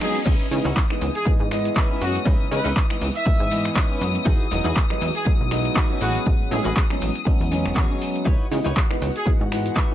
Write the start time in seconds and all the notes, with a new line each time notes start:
Already playing: B3 B4, riser
0.01 F#3 G#3 B3 D#4 G#4, finger snap, open hi-hat, shaker
0.15 closed hi-hat, shaker
0.26 C#2 E3 C#4 D#4 E4 B4 D#6, kick, closed hi-hat, crash, shaker
0.40 shaker
0.51 C#3 E3 G#3 B3 D#4, open hi-hat, shaker
0.65 C#2 C#4 D#4 E4 F#4, closed hi-hat, shaker
0.77 kick, clap, closed hi-hat, shaker
0.90 E3 G#3 B3 D#4, finger snap, shaker
1.01 C#2, muted clean electric guitar stroke, open hi-hat, shaker
1.15 G#4, closed hi-hat, shaker
1.26 G#2 E3 G#3 B3 D#4, muted clean electric guitar stroke, kick, closed hi-hat, shaker
1.40 G#2, muted clean electric guitar stroke, shaker
1.51 E3 G#3 B3 D#5, finger snap, open hi-hat, shaker
1.65 closed hi-hat, shaker
1.76 C#4 D#4 E4 B4, kick, clap, closed hi-hat, shaker
1.90 E3 G#3 B3 C#4, shaker
2.01 F#2 F#4, open hi-hat, shaker
2.15 closed hi-hat, shaker
2.25 C#2 C#4 D#4 E4 B4, kick, closed hi-hat, shaker
2.40 C#3, shaker
2.51 C#3 E3 G#3 B3 D#4 B4, open hi-hat, shaker
2.64 C#2 C#4 D#4 E4 B4, closed hi-hat, shaker
2.76 kick, clap, closed hi-hat, shaker
2.90 E3 G#3 B3 D#4, finger snap, shaker
3.01 C#2, muted clean electric guitar stroke, open hi-hat, shaker
3.15 E5, closed hi-hat, shaker
3.26 E3 G#3 B3 D#4, muted clean electric guitar stroke, kick, closed hi-hat, shaker
3.39 G#2, muted clean electric guitar stroke, shaker
3.51 E3 G#3 B3 D#5, open hi-hat, shaker
3.65 finger snap, closed hi-hat, shaker
3.75 C#4 D#4 E4 B4, kick, clap, closed hi-hat, shaker
3.90 E3 G#3 B3 C#4, shaker
4.01 F#2, open hi-hat, shaker
4.15 closed hi-hat, shaker
4.25 E2 D#4 E4 F#4 G#4, kick, closed hi-hat, shaker
4.40 shaker
4.50 E1 F#3 G#3 B3, open hi-hat, shaker
4.52 D#4, shaker
4.64 E2 D#4 E4 F#4 G#4, closed hi-hat, shaker
4.76 kick, clap, closed hi-hat, shaker
4.90 F#3 G#3 B3 D#4, finger snap, shaker
5.01 E2, muted clean electric guitar stroke, open hi-hat, shaker
5.15 G#4, closed hi-hat, shaker
5.25 B1 F#3 G#3 B3 D#4, muted clean electric guitar stroke, kick, closed hi-hat, shaker
5.39 B1, muted clean electric guitar stroke, shaker
5.51 F#3 G#3 B3 D#4, finger snap, open hi-hat, shaker
5.65 closed hi-hat, shaker
5.76 D#4 E4 F#4 B4, kick, clap, closed hi-hat, shaker
5.90 F#3 G#3 B3 C#4, shaker
6.00 A1 C#4 F#4 G#4 B4, open hi-hat, shaker
6.15 closed hi-hat, shaker
6.26 A1, kick, closed hi-hat, shaker
6.40 A2, shaker
6.51 A2 F#3 G#3 B3 C#4 G#4, open hi-hat, shaker
6.64 A1 C#4 F#4 G#4 B4, closed hi-hat, shaker
6.75 kick, clap, closed hi-hat, shaker
6.77 shaker
6.90 F#3 G#3 B3 C#4, finger snap, shaker
7.01 A1, muted clean electric guitar stroke, open hi-hat, shaker
7.15 closed hi-hat, shaker
7.25 F#3 G#3 B3 C#4, muted clean electric guitar stroke, kick, closed hi-hat, shaker
7.39 E2, muted clean electric guitar stroke, open hi-hat, shaker
7.51 F#3 G#3 B3 C#4, open hi-hat, shaker
7.65 E1, finger snap, closed hi-hat, shaker
7.75 E2 C#4 F#4 G#4 C#5, kick, clap, closed hi-hat, shaker
7.90 F#3 G#3 B3 C#4, shaker
8.02 open hi-hat, shaker
8.15 closed hi-hat, shaker
8.25 C#2 D#4 E4 F#4 B4 C#5 F#5, kick, closed hi-hat, shaker
8.41 shaker
8.51 C#3 E3 G#3 B3 D#4, open hi-hat, shaker
8.64 C#2 D#4 E4 B4 C#5, closed hi-hat, shaker
8.77 kick, clap, closed hi-hat, shaker
8.90 E3 G#3 B3 D#4, finger snap, shaker
9.01 C#2, muted clean electric guitar stroke, open hi-hat, shaker
9.16 G#4, closed hi-hat, shaker
9.26 G#2 E3 G#3 B3 D#4, muted clean electric guitar stroke, kick, closed hi-hat, shaker
9.39 G#2, muted clean electric guitar stroke, shaker
9.52 E3 G#3 B3, finger snap, open hi-hat, shaker
9.66 closed hi-hat, shaker
9.76 D#4 E4 B4 E5, kick, clap, closed hi-hat, shaker
9.90 E3 G#3 B3 C#4, shaker